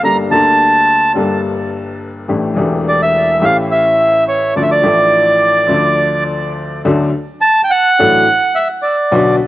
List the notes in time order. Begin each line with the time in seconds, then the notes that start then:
0.02 G1 G2 G3 A#3 D4 A4 A#5
0.29 D2 D3 G3 A#3 D4 A4 A5
1.14 G1 G2 G3 A#3 D4
1.18 A4
2.28 A1 A2 E3 A3 D4 G4
2.54 E1 E2 E3 A3 D4
2.59 G4
2.89 D5
3.03 E5
3.40 A1 A2 E3 A3 C#4 G4
3.45 F5
3.72 E5
4.28 C#5
4.55 D2 D3 F3 A3 D4 A4 D5
4.63 E5
4.71 D5
4.81 A1 A2 F3 A3 D4
4.86 A4
5.67 D2 D3 F3 A3 D4 A4
6.85 D2 D3 F#3 A3 D4 A4
7.41 A5
7.64 G5
7.71 F#5
7.99 A1 A2 F#3 A3 D4 A4
8.55 E5
8.82 D5
9.11 B1 B2 D3 F#3 B3 F#4